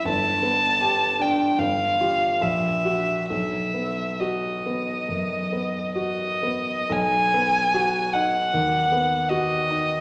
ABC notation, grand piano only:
X:1
M:4/4
L:1/8
Q:1/4=74
K:B
V:1 name="Grand piano"
=G,,, B, =G =D G,,, [=FG] A,,, ^F | B,,, B, F B, F,, B, F B, | B,,, B, F D D,, B, F D |]